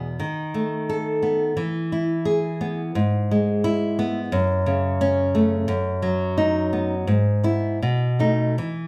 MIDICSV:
0, 0, Header, 1, 2, 480
1, 0, Start_track
1, 0, Key_signature, 4, "major"
1, 0, Tempo, 686499
1, 141, Time_signature, 2, 2, 24, 8
1, 4456, Tempo, 722892
1, 5416, Tempo, 770218
1, 6074, End_track
2, 0, Start_track
2, 0, Title_t, "Nylon-string guitar"
2, 0, Program_c, 0, 24
2, 0, Note_on_c, 0, 40, 51
2, 0, Note_on_c, 0, 47, 44
2, 0, Note_on_c, 0, 59, 45
2, 115, Note_off_c, 0, 40, 0
2, 137, Note_on_c, 0, 51, 56
2, 140, Note_off_c, 0, 59, 0
2, 142, Note_off_c, 0, 47, 0
2, 380, Note_on_c, 0, 57, 50
2, 626, Note_on_c, 0, 69, 61
2, 857, Note_on_c, 0, 59, 50
2, 1007, Note_off_c, 0, 69, 0
2, 1072, Note_off_c, 0, 51, 0
2, 1095, Note_on_c, 0, 52, 61
2, 1098, Note_off_c, 0, 59, 0
2, 1099, Note_off_c, 0, 57, 0
2, 1344, Note_on_c, 0, 64, 49
2, 1576, Note_on_c, 0, 68, 66
2, 1823, Note_on_c, 0, 59, 54
2, 1966, Note_off_c, 0, 68, 0
2, 2036, Note_off_c, 0, 52, 0
2, 2065, Note_on_c, 0, 44, 65
2, 2066, Note_off_c, 0, 59, 0
2, 2068, Note_off_c, 0, 64, 0
2, 2317, Note_on_c, 0, 56, 55
2, 2546, Note_on_c, 0, 64, 77
2, 2788, Note_on_c, 0, 59, 63
2, 2927, Note_off_c, 0, 64, 0
2, 2996, Note_off_c, 0, 44, 0
2, 3022, Note_on_c, 0, 42, 74
2, 3025, Note_off_c, 0, 59, 0
2, 3028, Note_off_c, 0, 56, 0
2, 3261, Note_on_c, 0, 49, 58
2, 3503, Note_on_c, 0, 61, 81
2, 3738, Note_on_c, 0, 57, 57
2, 3882, Note_off_c, 0, 61, 0
2, 3946, Note_off_c, 0, 42, 0
2, 3971, Note_on_c, 0, 42, 69
2, 3974, Note_off_c, 0, 49, 0
2, 3975, Note_off_c, 0, 57, 0
2, 4212, Note_on_c, 0, 54, 57
2, 4457, Note_on_c, 0, 63, 78
2, 4691, Note_on_c, 0, 59, 49
2, 4831, Note_off_c, 0, 63, 0
2, 4896, Note_off_c, 0, 42, 0
2, 4921, Note_on_c, 0, 44, 62
2, 4924, Note_off_c, 0, 54, 0
2, 4926, Note_off_c, 0, 59, 0
2, 5161, Note_on_c, 0, 59, 45
2, 5166, Note_on_c, 0, 64, 63
2, 5388, Note_off_c, 0, 59, 0
2, 5389, Note_off_c, 0, 64, 0
2, 5400, Note_off_c, 0, 44, 0
2, 5420, Note_on_c, 0, 47, 61
2, 5649, Note_on_c, 0, 57, 40
2, 5653, Note_on_c, 0, 63, 63
2, 5867, Note_off_c, 0, 57, 0
2, 5870, Note_off_c, 0, 63, 0
2, 5881, Note_off_c, 0, 47, 0
2, 5891, Note_on_c, 0, 52, 51
2, 6074, Note_off_c, 0, 52, 0
2, 6074, End_track
0, 0, End_of_file